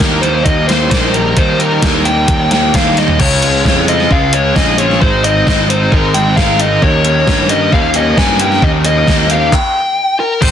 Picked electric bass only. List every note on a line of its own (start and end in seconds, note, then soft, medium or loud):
0.00 0.42 D#2 medium
0.45 0.87 D#2 medium
0.91 1.33 A#1 medium
1.37 1.79 D#3 medium
1.82 2.24 D#2 medium
2.28 2.70 D#2 medium
2.74 3.16 D#2 medium
3.19 3.61 C#2 medium
3.65 4.06 F2 medium
4.11 4.52 C#2 medium
4.56 4.97 A#1 medium
5.01 5.43 G#1 loud
5.47 5.88 G#1 medium
5.92 6.13 G#1 medium
6.15 6.35 G#1 medium
6.37 6.78 G#1 medium
6.82 7.23 D#2 loud
7.27 7.68 G2 medium
7.73 8.14 D#2 medium
8.17 8.58 G2 medium
8.62 9.03 D#2 loud
9.07 9.48 D#2 loud
10.42 10.51 G#1 loud